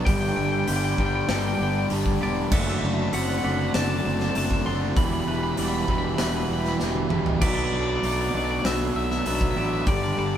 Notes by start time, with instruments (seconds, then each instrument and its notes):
Already playing: clean electric guitar D4 G4 D5, analog synth pad A5
0.05 fingered electric bass G1, overdriven electric guitar G2 D3, distorted electric guitar G3 B3 D4 G4, analog synth pad G4 D5 B5, clean electric guitar G5, kick, open hi-hat
0.14 clean electric guitar G5
0.21 clean electric guitar G5
0.29 clean electric guitar G5
0.36 fingered electric bass G1, clean electric guitar G3 A4 G5
0.45 clean electric guitar G5
0.52 clean electric guitar G5
0.59 clean electric guitar G5
0.67 fingered electric bass G1, overdriven electric guitar G2 D3, distorted electric guitar G3 B3 D4 G4, clean electric guitar B4 G5, open hi-hat
0.76 clean electric guitar G5
0.84 clean electric guitar G5
0.92 clean electric guitar G5
0.98 fingered electric bass G1, overdriven electric guitar G2 D3, distorted electric guitar G3 B3 D4 G4, clean electric guitar G5, kick
1.06 clean electric guitar G5
1.15 clean electric guitar G5
1.22 clean electric guitar G5
1.29 fingered electric bass G1, overdriven electric guitar G2 D3, distorted electric guitar G3 B3 D4 G4, clean electric guitar A4 G5, snare, open hi-hat
1.39 clean electric guitar G5
1.47 clean electric guitar G5
1.55 clean electric guitar G5
1.59 fingered electric bass G1, clean electric guitar B3 G4 G5
1.70 clean electric guitar G5
1.78 clean electric guitar G5
1.90 fingered electric bass G1, overdriven electric guitar G2 D3, distorted electric guitar G3 B3 D4 G4, open hi-hat
2.06 kick
2.21 fingered electric bass E1, overdriven electric guitar G2 D3, distorted electric guitar G3 B3 D4 G4, clean electric guitar G4 D5
2.51 fingered electric bass F#1, overdriven electric guitar D3, distorted electric guitar F#3 A3 D4 F#4, clean electric guitar E5 F#5, kick, crash
2.62 clean electric guitar E5
2.69 clean electric guitar E5
2.78 clean electric guitar E5
2.83 fingered electric bass F#1, clean electric guitar F#3 E5
2.94 clean electric guitar E5
3.02 clean electric guitar E5
3.12 fingered electric bass F#1, overdriven electric guitar D3, distorted electric guitar F#3 A3 D4 F#4, clean electric guitar C4 E5 F#5, open hi-hat
3.24 clean electric guitar F#5
3.29 clean electric guitar F#5
3.38 clean electric guitar F#5
3.43 fingered electric bass F#1, overdriven electric guitar D3, distorted electric guitar F#3 A3 D4 F#4, clean electric guitar E5 F#5
3.53 clean electric guitar F#5
3.61 clean electric guitar F#5
3.68 clean electric guitar F#5
3.74 fingered electric bass F#1, overdriven electric guitar D3, distorted electric guitar F#3 A3 D4 F#4, clean electric guitar D5 A5, snare, open hi-hat
3.83 clean electric guitar A5
3.90 clean electric guitar A5
3.98 clean electric guitar A5
4.05 fingered electric bass F#1, clean electric guitar C4 A5
4.13 clean electric guitar A5
4.20 clean electric guitar A5, snare
4.29 clean electric guitar A5
4.35 fingered electric bass F#1, overdriven electric guitar D3, distorted electric guitar F#3 A3 D4 F#4, clean electric guitar C5 A5, open hi-hat
4.46 clean electric guitar A5
4.51 clean electric guitar A5, kick
4.66 fingered electric bass F#1, overdriven electric guitar D3, distorted electric guitar F#3 A3 D4 F#4, clean electric guitar A4 C6
4.96 fingered electric bass E1, overdriven electric guitar E2 B2, clean electric guitar E2 B5, distorted electric guitar E3 B3 E4 G4, analog synth pad G4 E5, kick, open hi-hat
5.05 clean electric guitar B5
5.13 clean electric guitar B5
5.20 clean electric guitar B5
5.27 fingered electric bass E1, clean electric guitar E3 B4 B5
5.36 clean electric guitar B5
5.43 clean electric guitar B5
5.52 clean electric guitar B5
5.57 fingered electric bass E1, overdriven electric guitar E2 B2, distorted electric guitar E3 B3 E4 G4, clean electric guitar G3 D5 B5, open hi-hat
5.68 clean electric guitar B5
5.74 clean electric guitar B5
5.83 clean electric guitar B5
5.88 fingered electric bass E1, overdriven electric guitar E2 B2, distorted electric guitar E3 B3 E4 G4, clean electric guitar D4 B5, kick
5.98 clean electric guitar B5
6.07 clean electric guitar B5
6.15 distorted electric guitar E3, clean electric guitar B5, snare, open hi-hat
6.19 fingered electric bass E1, overdriven electric guitar E2 B2, distorted electric guitar B3 E4 G4, clean electric guitar B4 B5
6.29 clean electric guitar B5
6.37 clean electric guitar B5
6.45 clean electric guitar B5
6.50 fingered electric bass E1, clean electric guitar G3 G4 B5
6.61 clean electric guitar B5, snare
6.69 clean electric guitar B5
6.80 fingered electric bass E1, overdriven electric guitar E2 B2, distorted electric guitar E3 B3 E4 G4, clean electric guitar D4, snare
6.95 high tom
7.09 fingered electric bass E1, overdriven electric guitar E2 B2, distorted electric guitar E3 B3 E4 G4, clean electric guitar G4, mid tom
7.26 floor tom
7.39 fingered electric bass B1, distorted electric guitar B2 F#3 B3 D4 F#4, clean electric guitar D5 E5, analog synth pad F#5, kick, crash
7.48 clean electric guitar D5
7.56 clean electric guitar D5
7.65 clean electric guitar D5
7.72 fingered electric bass B1, clean electric guitar F#3 D5
7.82 clean electric guitar D5
7.89 clean electric guitar D5
7.96 clean electric guitar D5
8.01 fingered electric bass B1, distorted electric guitar B2 F#3 B3 D4 F#4, clean electric guitar A3 D5, open hi-hat
8.05 clean electric guitar D5
8.12 clean electric guitar D5
8.21 clean electric guitar D5
8.28 distorted electric guitar B2 F#3, clean electric guitar D5
8.33 fingered electric bass B1, distorted electric guitar B3 D4 F#4, clean electric guitar D5
8.44 clean electric guitar D5
8.51 clean electric guitar D5
8.59 distorted electric guitar B2 F#3, clean electric guitar D5
8.63 fingered electric bass B1, distorted electric guitar B3 D4 F#4, clean electric guitar B4 E5, snare, open hi-hat
8.95 fingered electric bass B1, clean electric guitar A3 E5
9.04 clean electric guitar E5
9.11 clean electric guitar E5, snare
9.19 clean electric guitar E5
9.24 fingered electric bass B1, distorted electric guitar B2 F#3 B3 D4 F#4, clean electric guitar A4 E5, open hi-hat
9.35 clean electric guitar E5
9.41 clean electric guitar E5, kick
9.51 clean electric guitar E5
9.55 fingered electric bass A1, distorted electric guitar B2 F#3 B3 D4 F#4, clean electric guitar G4 E5
9.66 clean electric guitar E5
9.73 clean electric guitar E5
9.82 clean electric guitar E5
9.86 fingered electric bass G1, overdriven electric guitar G2 D3, distorted electric guitar G3 B3 D4 G4, analog synth pad G4, clean electric guitar D5, kick, open hi-hat
9.97 clean electric guitar D5
10.03 clean electric guitar D5
10.13 clean electric guitar D5
10.17 fingered electric bass G1, clean electric guitar G3 A4 D5
10.26 clean electric guitar D5